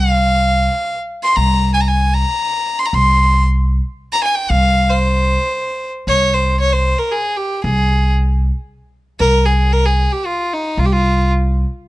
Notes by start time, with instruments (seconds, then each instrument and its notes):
Already playing: upright bass C2, violin F5
1.23 violin C6
1.36 upright bass C2, violin A#5
1.74 violin G#5
1.81 violin A#5
1.88 violin G#5
2.14 violin A#5
2.79 violin C6
2.85 violin A#5
2.93 upright bass C2, violin C6
4.12 violin A#5
4.24 violin G#5
4.35 violin G5
4.50 upright bass C2, violin F5
4.89 violin C5
6.07 upright bass C2, violin C#5
6.34 violin C5
6.60 violin C#5
6.73 violin C5
6.98 violin A#4
7.11 violin G#4
7.37 violin G4
7.64 upright bass C2, violin G#4
9.20 upright bass C2, violin A#4
9.46 violin G#4
9.73 violin A#4
9.86 violin G#4
10.12 violin G4
10.26 violin F4
10.53 violin D#4
10.77 upright bass C2, violin F4
10.85 violin G4
10.93 violin F4